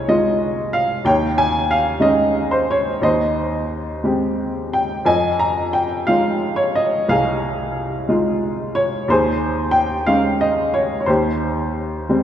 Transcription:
upright piano
Already playing: C2 G#3 D#4 F4 G#4 C#5 D#5 F5
0.08 G#3 D#4 F4 D#5
0.73 F5
1.05 D#2 C#5 G5
1.38 G#5
1.71 F5
2.00 G#3 C#4 D#4 D#5
2.51 C5
2.71 C#5
3.02 D#2 C5 D#5
4.04 G#3 C4 G4
4.73 G5
5.05 F2 D#5 G#5
5.39 A#5
5.73 G5
6.07 G#3 D#4 F4 F5
6.56 C#5
6.75 D#5
7.08 C2 G#4 F5
8.09 G#3 D#4 F4
8.75 C#5
9.08 D#2 G#4 C5
9.71 G5
10.07 G#3 C#4 D#4 F5
10.41 D#5
10.74 C#5
11.00 C#5
11.06 D#2 G4 C5
12.09 G3 G#3 C4

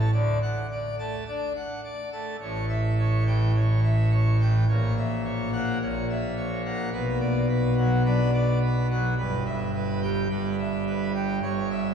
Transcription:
pipe organ
0.00 C#5 A5
0.13 D2 D3 D5
0.42 F#5
0.71 D5
0.99 A3 A5
1.28 D4 D5
1.56 F#5
1.84 D5
2.12 A3 A5
2.41 A1 A2 C#5
2.69 E5
2.99 C#5
3.27 E3 G5
3.55 C#5
3.83 E5
4.11 C#5
4.40 E3 G5
4.68 A#1 A#2 C#5
4.97 E5
5.25 C#5
5.53 A#3 F#5
5.81 A#1 A#2 C#5
6.10 E5
6.37 C#5
6.65 A#3 F#5
6.93 B1 B2 B4
7.21 D5
7.49 B4
7.77 F#3 F#5
8.05 D4 B4
8.34 D5
8.62 B4
8.90 F#3 F#5
9.18 G1 G2 B4
9.46 E5
9.74 B4
10.02 G3 G5
10.30 G1 G2 B4
10.59 E5
10.87 B4
11.15 G3 G5
11.43 G1 G2 C#5
11.71 E5

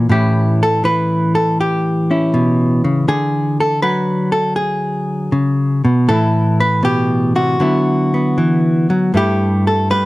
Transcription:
hollow-body jazz guitar
Already playing: E4
0.09 A2 E3 C#4 E4 G4
0.63 A4
0.84 E3 B4
1.35 A4
1.61 G4
2.11 C#4 E4
2.34 B2
2.84 C#3
3.08 D3 G#4
3.60 A4
3.82 F#3 B4
4.32 A4
4.56 G#4
5.32 C#3
5.85 B2
6.08 A2 E3 E4 A4
6.60 B4
6.83 B2 G4
7.36 C3 F#4
7.60 D3 F#3 B3 E4
8.14 B3
8.38 E3
8.90 F#3
9.14 G2 G3 A3 E4 G4
9.67 A4
9.90 G3 B4

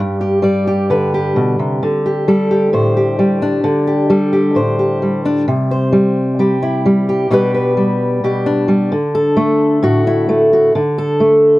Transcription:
steel-string acoustic guitar
Already playing: G2 G3 G4
0.21 G4
0.42 G3 D5
0.67 G4
0.90 D3 B4
1.14 G4
1.36 B2
1.59 C3
1.83 D3
2.06 G4
2.28 G3 A4
2.51 G4
2.73 A2 C5
2.97 G4
3.19 G3
3.42 D4
3.64 D3
3.87 G4
4.10 G3 A4
4.33 G4
4.55 A2 C5
4.79 G4
5.02 G3
5.25 D4
5.48 C3
5.71 C5
5.92 G3
6.39 G3 G4
6.63 E4
6.86 G3
7.09 G4
7.31 B2 G3 D4 G4 B4
7.54 B4
7.77 G3
8.24 B2 G4
8.46 D4
8.68 G3
8.92 D3
9.15 A4
9.37 A3
9.83 A2 F#4
10.07 E4
10.29 A3
10.53 F#4
10.75 D3
10.98 A4
11.20 A3

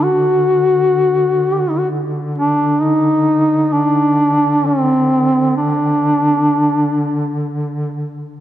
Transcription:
duduk
Already playing: D3
0.03 F#4
1.52 G4
1.60 F#4
1.70 D#4
1.78 F#4
2.38 D4
2.82 D#4
3.73 D4
4.66 C4
5.56 D4

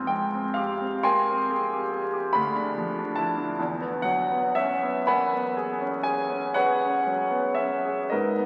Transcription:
grand piano
Already playing: F2 C4
0.07 G#3 G5
0.34 C4
0.54 G4 F5
0.81 C4
1.03 A#3 G5 G#5 C6
1.30 C4
1.51 G#4
1.73 G4
1.92 G#4
2.13 G4
2.33 D2 B5
2.56 D4
2.78 F3
2.99 D4
3.16 E4 A5
3.37 D4
3.59 E2
3.81 B3
4.02 F#3 F#5
4.31 B3
4.55 C#4 E5
4.83 B3
5.07 A#3 F#5 G#5 B5
5.33 B3
5.57 G#4
5.81 C#4
6.03 G#4 G#5
6.29 C#4
6.54 G#4 B4 C#5 F#5
6.81 C#4
7.07 F#3
7.31 B3
7.55 C#4 E5
7.85 G#4
8.10 G#2 A#4 B4 D#5
8.39 B3

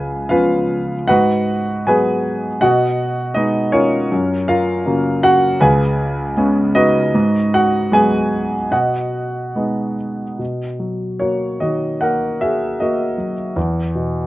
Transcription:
grand piano
Already playing: C#2 G#4 B4 F5 G#5
0.29 F3 B3 C#4 F4 B4 F5
1.08 G#2 F#4 B4 D#5 F#5
1.87 F#3 G#3 B3 G#4 B4 G#5
2.61 B2 F#4 D#5 F#5
3.34 G#3 B3 D#4 D#5
3.72 C#4 F4 A#4 C#5
4.12 F#2
4.48 F4 A#4 F5
4.86 C#3 F#3 A#3
5.23 F#4 F#5
5.60 C#2 G#4 B4 F5 G#5
6.37 G#3 B3 C#4
6.75 D#4 F#4 B4 D#5
7.14 G#2
7.54 F#4 F#5
7.92 F#3 G#3 B3 G#4 B4 G#5
8.71 B2 F#4 D#5 F#5
9.55 G#3 B3 D#4
10.39 B2
10.79 F#3
11.19 A#3 F#4 C#5
11.60 D#3 F#4 D#5
12.01 A#3 A#4 F#5
12.41 F#4 G#4 E5
12.80 A#3 F#4 D#5
13.18 F#3
13.56 E2
13.95 B2

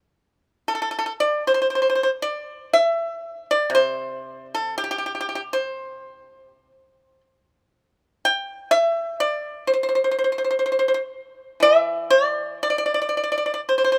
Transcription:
pipa
0.68 A4
0.75 A4
0.82 A4
0.91 A4
0.99 A4
1.06 A4
1.20 D5
1.47 C5
1.54 C5
1.62 C5
1.70 C5
1.75 C5
1.82 C5
1.90 C5
1.95 C5
2.03 C5
2.22 D5
2.73 E5
3.51 D5
3.70 C3
3.75 C5
4.55 A4
4.78 G4
4.84 G4
4.91 G4
4.98 G4
5.06 G4
5.15 G4
5.21 G4
5.29 G4
5.35 G4
5.53 C5
8.25 G5
8.71 E5
9.20 D5
9.67 C5
9.74 C5
9.83 C5
9.89 C5
9.95 C5
10.04 C5
10.11 C5
10.19 C5
10.24 C5
10.32 C5
10.38 C5
10.44 C5
10.51 C5
10.59 C5
10.66 C5
10.72 C5
10.79 C5
10.88 C5
10.94 C5
11.60 E3 E5
12.10 D5
12.63 D5
12.70 D5
12.78 D5
12.86 D5
12.94 D5
13.02 D5
13.09 D5
13.17 D5
13.24 D5
13.32 D5
13.38 D5
13.46 D5
13.54 D5
13.69 C5
13.78 C5
13.84 C5
13.92 C5

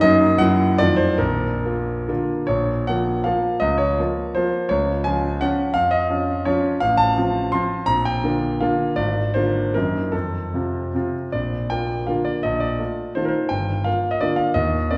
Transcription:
grand piano
0.01 F#2 F#3 A#3 D#4 D#5
0.38 F#2 F#3 A#3 E4 F#5
0.78 F2 D#3 A3 F4 D5
0.96 C5
1.18 A#1 A#4
1.65 A#3 F4
2.08 D3 A#3 F4
2.47 A#1 C#5
2.87 F3 A#3 F4 F#5
3.24 F3 A#3 F4 F5
3.60 C#2 D#5
3.78 C#5
3.99 F3 A#3 F4
4.35 F3 A#3 F4 C5
4.69 C#2 C#5
5.04 F3 C#4 F4 G#5
5.41 F3 C#4 F4 F#5
5.74 F2 F5
5.91 D#5
6.10 F3 C#4 F4
6.45 F3 C#4 F4 C#5
6.80 A1 F5
6.97 A5
7.17 F3 C4 F4
7.52 F3 C4 F4 C6
7.86 A#1 A#5
8.05 G5
8.24 D3 A#3 F4
8.61 D3 A#3 F4 F5
8.96 G#1 D5
9.34 D3 A#3 F4 C5
9.74 F#2 D#3 A#3 D#4 A#4
10.12 F2 A4
10.54 C3 C4 F4
10.94 C3 C4 F4
11.32 A#1 D5
11.70 A#3 F4 G5
12.07 D3 A#3 F4 F5
12.25 D5
12.43 A#1 D#5
12.60 D5
12.79 A3 F4
13.15 D#3 A3 F4 C5
13.25 A#4 C5
13.49 G1 G5
13.84 A#3 F4 F5
14.11 D#5
14.21 D3 A#3 F4 D5
14.36 F5
14.54 D#2 D#5
14.91 C4 A#4 D5

